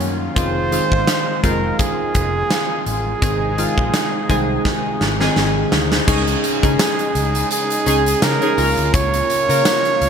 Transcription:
Already playing: synth keys D#3 F#3 A#3 C#4 F4, analog synth pad D#3 F#3 F4
0.00 fingered electric bass F#2, closed hi-hat
0.36 fingered electric bass F1, synth keys D#3 G#3 C4 F4, analog synth pad G#3, flugelhorn C5, kick, closed hi-hat
0.72 synth keys D#3 G#3 C4 F4, closed hi-hat
0.92 fingered electric bass G#1, kick
1.07 snare, closed hi-hat
1.43 fingered electric bass F1, synth keys D#3 G#3 C4 F4, flugelhorn A#4, kick, closed hi-hat
1.79 flugelhorn G#4, kick, closed hi-hat
2.15 fingered electric bass F1, kick, closed hi-hat
2.50 snare, closed hi-hat
2.86 fingered electric bass A1, flugelhorn G#4, closed hi-hat
3.22 fingered electric bass G#1, analog synth pad C3 G#3 D#4, synth keys D#3 G#3 C4 G#4, kick, closed hi-hat
3.58 synth keys D#3 G#3 C4 F4, closed hi-hat
3.78 fingered electric bass A#1, kick
3.94 snare, closed hi-hat
4.29 fingered electric bass C2, synth keys D#3 G#3 C4 G#4, kick, closed hi-hat
4.65 kick, snare
5.01 fingered electric bass G#1, snare
5.20 synth keys D#3 G#3 C4 G#4, snare
5.36 fingered electric bass G#1, snare
5.72 fingered electric bass D2, snare
5.92 snare
6.07 fingered electric bass C#2, analog synth pad C#3 G#3 D#4, synth keys C#4 D#4 G#4, kick, crash, tambourine
6.28 closed hi-hat
6.44 closed hi-hat, tambourine
6.63 fingered electric bass C#3, synth keys C#4 D#4 G#4, kick, closed hi-hat
6.79 flugelhorn G#4, snare, closed hi-hat, tambourine
6.99 closed hi-hat
7.15 fingered electric bass C#2, closed hi-hat, tambourine
7.35 closed hi-hat
7.51 flugelhorn G#4, closed hi-hat, tambourine
7.70 closed hi-hat
7.86 fingered electric bass C#2, synth keys C#4 D#4 G#4, closed hi-hat, tambourine
8.06 closed hi-hat
8.22 fingered electric bass C#3, flugelhorn A#4, snare, closed hi-hat, tambourine
8.41 synth keys C#4 D#4 G#4, closed hi-hat
8.57 fingered electric bass C#2, analog synth pad A#3 F4, synth keys C#4 F4 A#4, open hi-hat, tambourine
8.78 fingered electric bass D2, closed hi-hat
8.94 fingered electric bass C#2, flugelhorn C#5, kick, closed hi-hat, tambourine
9.14 closed hi-hat
9.30 closed hi-hat, tambourine
9.49 fingered electric bass C#3, synth keys C#4 F4 A#4, closed hi-hat
9.65 snare, closed hi-hat, tambourine
9.85 closed hi-hat
10.01 fingered electric bass C#2, closed hi-hat, tambourine

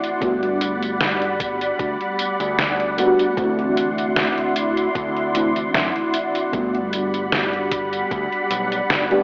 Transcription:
Already playing: fm electric piano E3 A3 C4 D4 E4, string machine E4 D5 F#5 C6
0.04 closed hi-hat, tambourine
0.20 fingered electric bass G1, fm electric piano G3 A3 B3 D4 F#4, string machine G3 B5, kick, closed hi-hat, tambourine
0.43 closed hi-hat
0.61 closed hi-hat, tambourine
0.83 closed hi-hat, tambourine
1.01 snare, closed hi-hat, tambourine
1.22 closed hi-hat
1.40 kick, closed hi-hat, tambourine
1.61 closed hi-hat, tambourine
1.79 fingered electric bass D2, kick, closed hi-hat, tambourine
2.01 closed hi-hat
2.19 closed hi-hat, tambourine
2.40 fingered electric bass D2, closed hi-hat, tambourine
2.59 snare, closed hi-hat, tambourine
2.80 closed hi-hat
2.97 fingered electric bass G1, fm electric piano G3 A3 B3 D4 F#4, closed hi-hat, tambourine
3.19 closed hi-hat, tambourine
3.36 fingered electric bass D2, fm electric piano E3 A3 C4 D4 F#4, string machine E4 C6, kick, closed hi-hat, tambourine
3.59 closed hi-hat
3.77 closed hi-hat, tambourine
3.98 closed hi-hat, tambourine
4.16 snare, closed hi-hat, tambourine
4.38 closed hi-hat
4.56 closed hi-hat, tambourine
4.77 closed hi-hat, tambourine
4.95 fingered electric bass D2, kick, closed hi-hat, tambourine
5.17 closed hi-hat
5.34 fm electric piano E3 A3 C4 D4 E4, closed hi-hat, tambourine
5.56 closed hi-hat, tambourine
5.74 fingered electric bass F#2, snare, closed hi-hat, tambourine
5.96 closed hi-hat
6.14 closed hi-hat, tambourine
6.35 closed hi-hat, tambourine
6.52 fingered electric bass G1, fm electric piano G3 A3 B3 D4 F#4, string machine G3 D5 F#5 B5, kick, closed hi-hat, tambourine
6.75 closed hi-hat
6.93 closed hi-hat, tambourine
7.14 closed hi-hat, tambourine
7.32 snare, closed hi-hat, tambourine
7.53 closed hi-hat
7.71 kick, closed hi-hat, tambourine
7.93 closed hi-hat, tambourine
8.11 fingered electric bass D2, kick, closed hi-hat, tambourine
8.32 closed hi-hat
8.51 fingered electric bass B1, closed hi-hat, tambourine
8.72 closed hi-hat, tambourine
8.90 fingered electric bass G1, snare, closed hi-hat, tambourine
9.10 fm electric piano G3 A3 B3 D4 G4, closed hi-hat

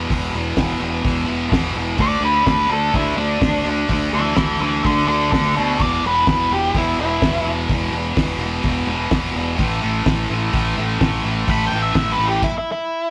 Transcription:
Already playing: distorted electric guitar B2 E3
0.10 fingered electric bass E1, distorted electric guitar E2 B2 E3, kick, open hi-hat
0.33 fingered electric bass E1, distorted electric guitar B2 E3
0.56 fingered electric bass E1, distorted electric guitar E2 B2 E3, kick, snare, open hi-hat
0.80 fingered electric bass E1, distorted electric guitar B2 E3
1.03 fingered electric bass E1, distorted electric guitar E2 B2 E3, kick, open hi-hat
1.25 distorted electric guitar E2 B2 E3
1.29 fingered electric bass E1
1.49 fingered electric bass E1, distorted electric guitar E2 B2 E3, kick, snare, open hi-hat
1.73 fingered electric bass E1, distorted electric guitar B2 E3
1.96 fingered electric bass D2, distorted electric guitar D3 A3 D4, kick, open hi-hat
2.01 lead electric guitar D5
2.21 fingered electric bass D2, distorted electric guitar A3 D4
2.25 lead electric guitar B4
2.44 fingered electric bass D2, distorted electric guitar D3 A3 D4, lead electric guitar B4, kick, snare, open hi-hat
2.67 fingered electric bass D2, distorted electric guitar A3 D4, lead electric guitar A4
2.91 fingered electric bass D2, distorted electric guitar D3 A3 D4, lead electric guitar E4, kick, open hi-hat
3.15 fingered electric bass D2, distorted electric guitar D3 A3 D4, lead electric guitar D4
3.39 fingered electric bass D2, distorted electric guitar D3 A3, kick, snare, open hi-hat
3.43 distorted electric guitar D4
3.64 fingered electric bass D2, distorted electric guitar A3 D4
3.87 fingered electric bass D2, distorted electric guitar D3 A3 D4, kick, open hi-hat
4.13 fingered electric bass D2, distorted electric guitar A3 D4, lead electric guitar B4 E5
4.34 fingered electric bass D2, distorted electric guitar D3 A3 D4, lead electric guitar B4 E5, kick, snare, open hi-hat
4.60 fingered electric bass D2, distorted electric guitar A3 D4, lead electric guitar B4 E5
4.83 fingered electric bass D2, distorted electric guitar D3 A3, lead electric guitar A4 D5, kick, open hi-hat
4.88 distorted electric guitar D4
5.06 fingered electric bass D2, distorted electric guitar D3 A3 D4, lead electric guitar A4 D5
5.30 fingered electric bass D2, distorted electric guitar D3 A3, lead electric guitar A4 D5, kick, snare, open hi-hat
5.34 distorted electric guitar D4
5.56 fingered electric bass D2, distorted electric guitar A3 D4, lead electric guitar F#4 B4
5.79 fingered electric bass E1, distorted electric guitar E2 B2 E3, lead electric guitar D5, kick, open hi-hat
6.03 fingered electric bass E1, distorted electric guitar B2 E3, lead electric guitar B4
6.27 fingered electric bass E1, distorted electric guitar E2 B2 E3, lead electric guitar B4, kick, snare, open hi-hat
6.51 fingered electric bass E1, distorted electric guitar B2 E3, lead electric guitar G4
6.74 fingered electric bass E1, distorted electric guitar E2 B2 E3, lead electric guitar E4, kick, open hi-hat
6.98 fingered electric bass E1, distorted electric guitar E2 B2 E3, lead electric guitar E4
7.21 fingered electric bass E1, distorted electric guitar E2 B2 E3, kick, snare, open hi-hat
7.45 fingered electric bass E1, distorted electric guitar B2 E3
7.69 fingered electric bass E1, distorted electric guitar E2 B2 E3, kick, open hi-hat
7.92 fingered electric bass E1, distorted electric guitar E3
7.96 distorted electric guitar B2
8.16 fingered electric bass E1, distorted electric guitar E2 B2 E3, kick, snare, open hi-hat
8.38 fingered electric bass E1, distorted electric guitar E3
8.43 distorted electric guitar B2
8.63 fingered electric bass E1, distorted electric guitar E2 B2 E3, kick, open hi-hat
8.87 fingered electric bass E1, distorted electric guitar B2 E3
8.91 distorted electric guitar E2
9.10 fingered electric bass E1, distorted electric guitar E2 B2, kick, snare, open hi-hat
9.15 distorted electric guitar E3
9.32 fingered electric bass E1, distorted electric guitar B2 E3
9.56 fingered electric bass A1, distorted electric guitar A2 E3, kick, open hi-hat
9.61 distorted electric guitar A3
9.82 fingered electric bass A1, distorted electric guitar E3 A3
10.06 fingered electric bass A1, distorted electric guitar A2 E3 A3, kick, snare, open hi-hat
10.30 fingered electric bass A1, distorted electric guitar A3
10.34 distorted electric guitar E3
10.51 fingered electric bass A1, distorted electric guitar A2 E3 A3, kick, open hi-hat
10.77 fingered electric bass A1, distorted electric guitar A2 E3 A3
10.99 fingered electric bass A1, distorted electric guitar A2 E3 A3, kick, snare, open hi-hat
11.23 fingered electric bass A1, distorted electric guitar E3 A3
11.47 fingered electric bass A1, distorted electric guitar A2 E3 A3, lead electric guitar B5, kick, open hi-hat
11.67 lead electric guitar G5
11.72 fingered electric bass A1, distorted electric guitar E3 A3
11.82 lead electric guitar E5
11.94 fingered electric bass A1, distorted electric guitar A2 E3 A3, lead electric guitar E5, kick, snare, open hi-hat
12.12 lead electric guitar B4
12.17 fingered electric bass A1, distorted electric guitar A3
12.22 distorted electric guitar E3
12.28 lead electric guitar G4
12.42 lead electric guitar E4, kick, crash
12.58 lead electric guitar E4
12.72 lead electric guitar E4

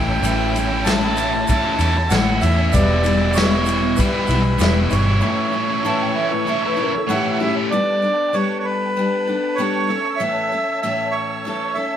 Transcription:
Already playing: fingered electric bass A1, overdriven electric guitar A2 E3, steel-string acoustic guitar A3 C#4 E4, tonewheel organ C#5 E5 A5 E6, accordion G5
0.06 overdriven electric guitar C#4 E4
0.10 overdriven electric guitar A3
0.21 fingered electric bass A1, overdriven electric guitar A2 E3 A3 C#4 E4, steel-string acoustic guitar A2 E3 A3 C#4 E4, ride, shaker
0.54 steel-string acoustic guitar A3 C#4 E4, ride, shaker
0.69 overdriven electric guitar A3 C#4 E4
0.84 overdriven electric guitar A2 E3 A3 C#4 E4, steel-string acoustic guitar A2 E3 A3 C#4 E4, accordion A5, snare, ride, shaker
1.16 overdriven electric guitar E3 A3 C#4 E4, ride, shaker
1.33 muted overdriven electric guitar stroke
1.47 overdriven electric guitar E3 A3 C#4 E4, steel-string acoustic guitar E3 A3 C#4 E4, accordion A5, kick, ride, shaker
1.64 overdriven electric guitar A3 C#4 E4
1.78 fingered electric bass E2, overdriven electric guitar E3 A3 C#4, steel-string acoustic guitar A3 C#4 E4, ride, shaker
1.84 overdriven electric guitar E4
1.96 muted overdriven electric guitar stroke
2.09 fingered electric bass A1, steel-string acoustic guitar A2 E3 A3 C#4 E4, overdriven electric guitar A2 E3 A3, accordion F#5, snare, ride, shaker
2.13 overdriven electric guitar C#4 E4
2.41 fingered electric bass E2, steel-string acoustic guitar C#4 E4, accordion E5, ride, shaker
2.45 steel-string acoustic guitar A3
2.58 overdriven electric guitar A3 C#4 E4
2.71 fingered electric bass E1, steel-string acoustic guitar E2 B2 E3 G3 B3 E4, overdriven electric guitar E2 B2 E3, tonewheel organ B4 E5 G5, accordion D5, kick, ride, shaker
2.75 overdriven electric guitar G3 B3 E4
3.04 steel-string acoustic guitar E3 G3 B3 E4, ride, shaker
3.19 overdriven electric guitar E3 G3 B3 E4
3.34 overdriven electric guitar E2 B2 E3 G3 B3, steel-string acoustic guitar E2 B2 E3 G3 B3 E4, accordion C#5, ride, shaker
3.38 overdriven electric guitar E4, snare
3.65 overdriven electric guitar E3 G3, ride, shaker
3.69 overdriven electric guitar B3 E4
3.82 muted overdriven electric guitar stroke
3.96 overdriven electric guitar E3 G3 B3 E4, steel-string acoustic guitar E3 G3 B3, accordion B4, kick, ride, shaker
4.01 steel-string acoustic guitar E4
4.13 overdriven electric guitar E3 G3 B3 E4
4.27 fingered electric bass B1, overdriven electric guitar E3 G3 B3, steel-string acoustic guitar B3 E4, ride, shaker
4.31 steel-string acoustic guitar E3 G3, overdriven electric guitar E4
4.43 muted overdriven electric guitar stroke
4.58 fingered electric bass E1, overdriven electric guitar E2 B2 E3 G3 B3 E4, steel-string acoustic guitar E2 B2 E3 G3 B3 E4, accordion B4, snare, ride, shaker
4.90 fingered electric bass G1, steel-string acoustic guitar E3 G3 B3 E4, accordion C#5, ride, shaker
5.06 overdriven electric guitar E3 G3 B3 E4
5.20 overdriven electric guitar A2 E3 A3 C#4 E4, steel-string acoustic guitar A2 E3 A3 C#4 E4, tonewheel organ C#5 A5
5.52 steel-string acoustic guitar A3 C#4 E4
5.68 overdriven electric guitar A3 C#4 E4
5.83 overdriven electric guitar A2 E3 A3 C#4 E4, steel-string acoustic guitar A2 E3 A3 C#4 E4, upright piano A5
6.02 upright piano G5
6.15 overdriven electric guitar E3 A3 C#4 E4, upright piano E5
6.31 upright piano B4, muted overdriven electric guitar stroke
6.45 overdriven electric guitar E3 A3 C#4 E4, steel-string acoustic guitar E3 A3 C#4 E4, upright piano E5
6.62 overdriven electric guitar A3 C#4 E4, upright piano B4
6.77 overdriven electric guitar E3 A3, steel-string acoustic guitar A3 C#4 E4
6.81 overdriven electric guitar C#4 E4, upright piano A#4
6.94 upright piano A4, muted overdriven electric guitar stroke
7.07 overdriven electric guitar A2 E3 A3 C#4, steel-string acoustic guitar A2 E3 A3 C#4 E4, accordion F#5
7.11 overdriven electric guitar E4, upright piano G4
7.32 accordion F#5
7.39 steel-string acoustic guitar A3 C#4 E4, upright piano F#4 G4, accordion E5
7.55 overdriven electric guitar C#4 E4
7.59 overdriven electric guitar A3
7.70 steel-string acoustic guitar G3 B3 D4 A4, tonewheel organ B4 G5 A5, accordion D5
8.02 steel-string acoustic guitar B3 D4 A4
8.33 steel-string acoustic guitar G3 B3 D4 A4, accordion C#5
8.59 accordion C#5
8.65 accordion B4
8.97 steel-string acoustic guitar G3 B3 D4 A4
9.27 steel-string acoustic guitar B3 D4 A4
9.56 steel-string acoustic guitar G3 B3, accordion C#5
9.60 steel-string acoustic guitar D4 A4
9.88 steel-string acoustic guitar A3 C#4 A4, tonewheel organ C#5 E5 A5 E6
10.17 steel-string acoustic guitar A2 E3 A3, accordion E5
10.21 steel-string acoustic guitar C#4 A4
10.52 steel-string acoustic guitar A3 C#4 A4
10.82 steel-string acoustic guitar A2 E3 A3 C#4 A4, accordion E5
11.11 accordion C#5
11.45 steel-string acoustic guitar E3 A3 C#4 A4
11.74 steel-string acoustic guitar A3 C#4 A4, accordion E5

